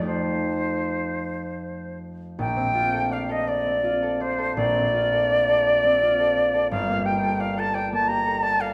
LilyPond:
<<
  \new Staff \with { instrumentName = "Flute" } { \time 6/8 \key bes \major \tempo 4. = 55 c''2~ c''8 r8 | g''4 f''16 ees''16 d''4 c''8 | d''2. | f''8 g''8 f''16 a''16 g''16 a''16 bes''8 a''16 f''16 | }
  \new Staff \with { instrumentName = "Harp" } { \time 6/8 \key bes \major << { r2. | bes,,16 c'16 f'16 a'16 d''16 a'16 d''16 c'16 f'16 a'16 d''16 a'16 | bes,,16 c'16 f'16 a'16 d''16 a'16 d''16 c'16 f'16 a'16 d''16 a'16 | g,,16 bes16 g'16 a'16 d''16 a'16 d''16 bes16 g'16 a'16 d''16 a'16 | } \\ { <f, a ees' g' d''>2.~ | <f, a ees' g' d''>2.~ | <f, a ees' g' d''>2. | r2. | } >> }
>>